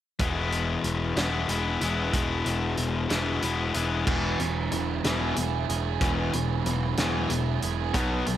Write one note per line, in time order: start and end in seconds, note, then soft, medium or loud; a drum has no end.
0.19 0.76 E1 medium
0.19 1.18 E2 medium
0.19 1.17 B2 medium
0.19 1.18 E3 medium
0.19 1.17 G#3 medium
0.19 1.17 B3 medium
0.19 1.16 E4 medium
0.19 kick medium
0.19 closed hi-hat medium
0.52 closed hi-hat medium
0.84 1.12 E1 medium
0.84 closed hi-hat medium
1.16 1.45 E1 medium
1.16 2.12 E2 medium
1.16 1.82 B2 medium
1.16 1.48 E3 medium
1.16 1.49 G#3 medium
1.16 1.50 B3 medium
1.16 1.51 E4 medium
1.16 snare medium
1.16 closed hi-hat medium
1.48 1.77 E1 medium
1.48 1.83 E3 medium
1.48 1.82 G#3 medium
1.48 1.81 B3 medium
1.48 1.80 E4 medium
1.48 closed hi-hat medium
1.81 2.09 E1 medium
1.81 2.13 E3 medium
1.81 2.13 G#3 medium
1.81 2.14 B3 medium
1.81 2.14 E4 medium
1.81 closed hi-hat medium
2.13 2.42 E1 medium
2.13 3.11 E2 medium
2.13 3.11 B2 medium
2.13 3.10 E3 medium
2.13 3.09 G#3 medium
2.13 3.09 B3 medium
2.13 3.08 E4 medium
2.13 kick medium
2.13 closed hi-hat medium
2.46 2.74 E1 medium
2.46 closed hi-hat medium
2.77 3.06 E1 medium
2.77 closed hi-hat medium
3.09 3.38 E1 medium
3.09 3.76 E2 medium
3.09 3.76 B2 medium
3.09 3.41 E3 medium
3.09 3.42 G#3 medium
3.09 3.43 B3 medium
3.09 3.44 E4 medium
3.09 snare medium
3.09 closed hi-hat medium
3.42 3.71 E1 medium
3.42 3.76 E3 medium
3.42 3.75 G#3 medium
3.42 3.74 B3 medium
3.42 3.73 E4 medium
3.42 closed hi-hat medium
3.74 4.03 E1 medium
3.74 4.06 E3 medium
3.74 4.06 G#3 medium
3.74 4.06 B3 medium
3.74 4.05 E4 medium
3.74 closed hi-hat medium
4.07 4.35 E1 medium
4.07 4.37 E2 medium
4.07 4.38 B2 medium
4.07 5.69 E3 medium
4.07 4.38 E3 loud
4.07 kick loud
4.07 crash medium
4.40 4.67 E1 medium
4.40 4.69 E2 medium
4.40 4.69 B2 medium
4.40 6.05 F#3 medium
4.40 closed hi-hat medium
4.72 5.00 E1 medium
4.72 5.01 E2 medium
4.72 5.01 B2 medium
4.72 5.36 E4 medium
4.72 closed hi-hat medium
5.04 5.32 E1 medium
5.04 5.35 E2 medium
5.04 5.35 B2 medium
5.04 5.35 E3 medium
5.04 5.68 G#4 medium
5.04 snare loud
5.04 closed hi-hat medium
5.36 5.65 E1 medium
5.36 5.65 E2 medium
5.36 5.66 B2 medium
5.36 6.64 E4 medium
5.36 closed hi-hat medium
5.69 5.97 E1 medium
5.69 6.97 G#4 medium
5.69 closed hi-hat medium
6.01 6.29 E1 medium
6.01 6.32 E2 medium
6.01 6.32 B2 medium
6.01 7.63 E3 medium
6.01 6.32 E3 medium
6.01 kick loud
6.01 closed hi-hat medium
6.33 6.61 E1 medium
6.33 6.62 E2 medium
6.33 6.63 B2 medium
6.33 7.95 F#3 medium
6.33 closed hi-hat medium
6.65 6.93 E1 medium
6.65 6.95 E2 medium
6.65 6.95 B2 medium
6.65 7.30 E4 medium
6.65 closed hi-hat medium
6.97 7.26 E1 medium
6.97 7.28 E2 medium
6.97 7.29 B2 medium
6.97 7.29 E3 medium
6.97 7.62 G#4 medium
6.97 snare loud
6.97 closed hi-hat medium
7.30 7.58 E1 medium
7.30 7.59 E2 medium
7.30 7.59 B2 medium
7.30 7.95 E4 medium
7.30 closed hi-hat medium
7.62 7.90 E1 medium
7.62 7.95 G#4 medium
7.62 closed hi-hat medium
7.94 8.22 B1 medium
7.94 8.25 B2 medium
7.94 8.37 B2 medium
7.94 8.25 F#3 medium
7.94 8.25 B3 medium
7.94 kick loud
7.94 closed hi-hat medium
8.26 8.37 B1 medium
8.26 8.37 B2 medium
8.26 8.37 D#3 medium
8.26 8.37 F#3 medium
8.26 closed hi-hat medium